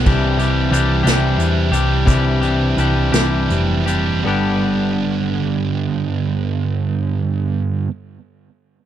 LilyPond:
<<
  \new Staff \with { instrumentName = "Clean electric guitar" } { \time 6/8 \key g \major \tempo 4. = 52 <c e g d' g'>8 <g d' g'>8 <e g d' g'>8 <c e g d' g'>4 <g d' g'>8 | <c e g d' g'>8 <g d' g'>8 <e g d' g'>8 <c e g d' g'>4 <g d' g'>8 | <g, d g b d' g'>2.~ | <g, d g b d' g'>2. | }
  \new Staff \with { instrumentName = "Distorted electric guitar" } { \time 6/8 \key g \major <e g c' g'>8 <e g c' g'>8 <e g c' g'>8 <e g c' g'>8 <e g c' g'>8 <e g c' g'>8 | <e g c' g'>8 <e g c' g'>8 <e g c' g'>8 <e g c' g'>8 <e g c' g'>8 <e g c' g'>8 | <g, d g b d' g'>2.~ | <g, d g b d' g'>2. | }
  \new Staff \with { instrumentName = "Picked electric bass" } { \clef bass \time 6/8 \key g \major c,4 c,8 c,8 e,8 c,8 | c,4 c,8 c,8 f,,4 | g,,2.~ | g,,2. | }
  \new DrumStaff \with { instrumentName = "Drums" } \drummode { \time 6/8 <cymc bd>8 hh8 hh8 <hh sn>8 hh8 hh8 | <hh bd>8 hh8 hh8 <hh sn>8 hh8 hh8 | r4. r4. | r4. r4. | }
>>